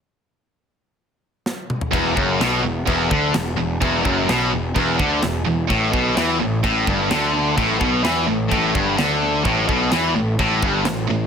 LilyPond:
<<
  \new Staff \with { instrumentName = "Distorted electric guitar" } { \clef bass \time 4/4 \key e \minor \tempo 4 = 128 r1 | e,8 fis,8 b,8 e,8 e,8 d8 e,8 e,8 | e,8 fis,8 b,8 e,8 e,8 d8 e,8 e,8 | a,8 b,8 e8 a,8 a,8 g,8 d4 |
a,8 b,8 e8 a,8 a,8 g,8 d4 | a,8 b,8 e8 a,8 a,8 g,8 a,8 a,8 | }
  \new Staff \with { instrumentName = "Distorted electric guitar" } { \clef bass \time 4/4 \key e \minor r1 | e,8 fis,8 b,8 e,8 e,8 d8 e,8 e,8 | e,8 fis,8 b,8 e,8 e,8 d8 e,8 e,8 | a,8 b,8 e8 a,8 a,8 g,8 d4 |
a,8 b,8 e8 a,8 a,8 g,8 d4 | a,8 b,8 e8 a,8 a,8 g,8 a,8 a,8 | }
  \new Staff \with { instrumentName = "Picked electric bass" } { \clef bass \time 4/4 \key e \minor r1 | e,,8 fis,,8 b,,8 e,,8 e,,8 d,8 e,,8 e,,8 | e,,8 fis,,8 b,,8 e,,8 e,,8 d,8 e,,8 e,,8 | a,,8 b,,8 e,8 a,,8 a,,8 g,,8 d,4 |
a,,8 b,,8 e,8 a,,8 a,,8 g,,8 d,4 | a,,8 b,,8 e,8 a,,8 a,,8 g,,8 a,,8 a,,8 | }
  \new DrumStaff \with { instrumentName = "Drums" } \drummode { \time 4/4 r4 r4 r4 sn8 toml16 tomfh16 | <cymc bd>8 bd8 <cymc sn>4 <cymc bd>8 bd8 <cymc sn>4 | <cymc bd>8 bd8 <cymc sn>4 <cymc bd>8 bd8 <cymc sn>4 | <cymc bd>8 bd8 <cymc sn>4 <cymc bd>8 bd8 <cymc sn>4 |
<cymc bd>8 bd8 <cymc sn>4 <cymc bd>8 bd8 <cymc sn>4 | <cymc bd>8 bd8 <cymc sn>4 <cymc bd>8 bd8 <cymc sn>4 | }
>>